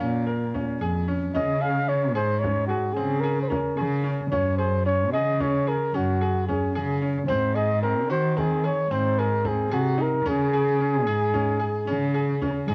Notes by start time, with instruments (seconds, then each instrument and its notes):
Already playing: flugelhorn F5
0.00 cello A#2, grand piano C#4
0.27 grand piano A#4
0.54 grand piano C#4, frame drum
0.81 cello F2, grand piano G#4
1.08 grand piano C#4
1.34 cello C#3, grand piano C#4, flugelhorn D#5, frame drum
1.61 grand piano G#4, flugelhorn F5
1.88 grand piano C#4, flugelhorn C#5
2.15 cello G#2, grand piano G#4, flugelhorn C5
2.39 grand piano C#4, flugelhorn C#5
2.44 frame drum
2.66 flugelhorn F#4, grand piano G#4
2.94 cello C#3, grand piano C4, flugelhorn G#4
2.98 frame drum
3.20 grand piano G#4, flugelhorn A#4
3.26 frame drum
3.42 flugelhorn C5
3.48 grand piano C#4, flugelhorn A#4, frame drum
3.77 cello C#3, grand piano G#4
4.04 grand piano C#4
4.32 cello F#2, grand piano C#4, flugelhorn C#5, frame drum
4.57 grand piano G#4, flugelhorn C5
4.86 grand piano C#4, flugelhorn C#5
5.13 cello C#3, grand piano G#4, flugelhorn D#5
5.40 grand piano C#4, flugelhorn C#5, frame drum
5.67 grand piano G#4, flugelhorn A#4
5.94 cello F#2, grand piano C#4, flugelhorn F#4, frame drum
6.21 grand piano G#4
6.48 grand piano C#4, flugelhorn G#4, frame drum
6.75 cello C#3, grand piano G#4
7.02 grand piano C#4
7.28 cello G#2, grand piano C4, flugelhorn C5, frame drum
7.55 grand piano G#4, flugelhorn D#5
7.82 grand piano C4, flugelhorn A#4
8.09 cello D#3, grand piano F#4, flugelhorn C5
8.37 grand piano C4, flugelhorn G#4, frame drum
8.64 grand piano G#4, flugelhorn C#5
8.90 cello G#2, grand piano C4, flugelhorn C5, frame drum
9.18 grand piano G#4, flugelhorn A#4, frame drum
9.44 grand piano C4, flugelhorn G#4, frame drum
9.70 cello C3, flugelhorn F#4, grand piano G#4
9.98 grand piano D#4, flugelhorn A#4
10.25 cello C#3, grand piano C#4, flugelhorn G#4, frame drum
10.53 grand piano G#4, frame drum
10.80 grand piano C#4, frame drum
11.07 cello G#2, grand piano G#4
11.34 grand piano C#4, frame drum
11.60 grand piano G#4
11.87 cello C#3, grand piano C#4
12.14 grand piano G#4
12.42 grand piano C#4, frame drum
12.68 cello G#2, grand piano G#4